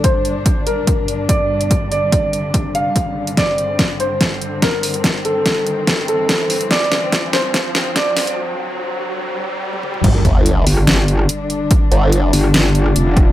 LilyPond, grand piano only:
\new Staff \with { instrumentName = "Grand piano" } { \time 4/4 \key g \minor \tempo 4 = 144 c''4. bes'4. d''4~ | d''8 d''2 f''4. | d''4. c''4. bes'4~ | bes'8 a'2 a'4. |
d''4. c''4. d''4 | r1 | r1 | r1 | }